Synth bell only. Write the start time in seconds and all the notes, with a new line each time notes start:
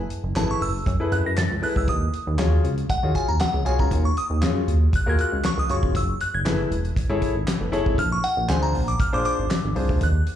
0.37 A5
0.51 C#6
0.62 E6
1.12 F#6
1.26 A#6
1.38 A6
1.64 F#6
1.77 E6
1.89 D#6
2.90 F#5
3.16 G#5
3.29 A#5
3.41 F#5
3.66 G#5
3.80 A#5
4.05 C#6
4.18 D#6
4.96 F#6
5.09 G#6
5.21 F#6
5.46 C#6
5.59 D#6
5.71 C#6
5.96 E6
6.21 F#6
6.34 G#6
7.99 F6
8.12 C#6
8.24 F#5
8.50 G#5
8.63 A#5
8.88 D6
9.00 F6
9.14 D6
9.26 D6
10.03 F#6